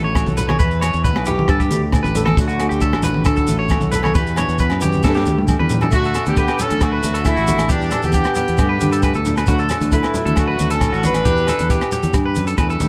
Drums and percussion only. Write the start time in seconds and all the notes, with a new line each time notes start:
0.15 kick, cross-stick, low agogo, shekere
0.26 high conga, shekere
0.37 closed hi-hat, low conga, shekere
0.49 cross-stick, high conga, low agogo
0.59 kick, shekere
0.71 shekere
0.82 cross-stick, closed hi-hat, low agogo, shekere
0.93 shekere
1.04 kick, shekere
1.16 cross-stick, low agogo
1.25 closed hi-hat, low conga, shekere
1.39 high conga
1.48 kick, cross-stick, low agogo, shekere
1.60 kick, shekere
1.71 closed hi-hat, high conga, shekere
1.92 kick, cross-stick, low agogo, shekere
2.04 high conga, shekere
2.15 closed hi-hat, low conga, shekere
2.26 cross-stick, high conga, low agogo
2.37 kick, shekere
2.49 shekere
2.60 cross-stick, closed hi-hat, low agogo
2.71 shekere
2.81 kick, shekere
2.93 cross-stick, low agogo
3.03 closed hi-hat, high conga, low conga, shekere
3.14 high conga
3.25 kick, cross-stick, low agogo, shekere
3.37 kick, shekere
3.47 closed hi-hat, high conga, shekere
3.69 kick, cross-stick, low agogo, shekere
3.81 high conga, shekere
3.92 closed hi-hat, low conga, shekere
4.03 cross-stick, high conga, low agogo
4.15 kick, shekere
4.27 shekere
4.36 cross-stick, closed hi-hat, low conga, low agogo, shekere
4.49 shekere
4.58 kick, shekere
4.70 cross-stick, low agogo, shekere
4.81 closed hi-hat, high conga, low conga, shekere
4.92 high conga, shekere
5.03 kick, snare, low agogo, shekere
5.15 snare, shekere
5.26 high conga, low conga, shekere
5.38 high tom
5.48 kick, mid tom, low agogo, shekere
5.61 high conga
5.69 floor tom, low conga, shekere
5.81 floor tom, low conga, low agogo, shekere
5.91 kick, closed hi-hat, low conga, shekere
6.04 shekere
6.14 cross-stick, closed hi-hat, low conga, low agogo, shekere
6.26 closed hi-hat, high conga, shekere
6.36 kick, closed hi-hat, shekere
6.48 cross-stick, low agogo, shekere
6.59 closed hi-hat, low conga, shekere
6.70 closed hi-hat, high conga
6.81 kick, cross-stick, closed hi-hat, low agogo, shekere
7.03 closed hi-hat, high conga, shekere
7.15 closed hi-hat, shekere
7.25 kick, cross-stick, closed hi-hat, low agogo, shekere
7.37 shekere
7.47 closed hi-hat, high conga, low conga, shekere
7.58 cross-stick, closed hi-hat, low agogo, shekere
7.69 kick, closed hi-hat, low conga, shekere
7.81 shekere
7.91 cross-stick, closed hi-hat, low conga, low agogo, shekere
8.02 closed hi-hat, high conga, shekere
8.12 kick, closed hi-hat, shekere
8.24 cross-stick, low agogo, shekere
8.35 closed hi-hat, low conga, shekere
8.48 closed hi-hat
8.57 kick, cross-stick, closed hi-hat, low agogo, shekere
8.80 closed hi-hat, high conga, shekere
8.92 closed hi-hat, shekere
9.02 kick, cross-stick, closed hi-hat, low agogo, shekere
9.14 shekere
9.25 closed hi-hat, low conga, shekere
9.37 cross-stick, closed hi-hat, low agogo, shekere
9.46 kick, closed hi-hat, low conga, shekere
9.59 shekere
9.69 cross-stick, closed hi-hat, low conga, low agogo, shekere
9.81 closed hi-hat, high conga, shekere
9.92 kick, closed hi-hat, shekere
10.03 cross-stick, low agogo, shekere
10.14 closed hi-hat, low conga, shekere
10.27 closed hi-hat, high conga
10.36 kick, cross-stick, closed hi-hat, low agogo, shekere
10.59 closed hi-hat, high conga, shekere
10.70 closed hi-hat, shekere
10.80 kick, cross-stick, closed hi-hat, low agogo, shekere
10.94 shekere
11.03 closed hi-hat, high conga, low conga, shekere
11.14 cross-stick, closed hi-hat, low agogo, shekere
11.25 kick, closed hi-hat, low conga, shekere
11.37 shekere
11.47 cross-stick, closed hi-hat, high conga, low conga, low agogo, shekere
11.59 closed hi-hat, high conga, shekere
11.70 kick, closed hi-hat, shekere
11.81 cross-stick, low agogo, shekere
11.92 closed hi-hat, low conga, shekere
12.03 closed hi-hat, high conga, shekere
12.13 kick, cross-stick, closed hi-hat, low agogo, shekere
12.35 closed hi-hat, high conga, shekere
12.47 closed hi-hat, shekere
12.57 kick, cross-stick, closed hi-hat, low agogo, shekere
12.70 shekere
12.80 closed hi-hat, high conga, low conga, shekere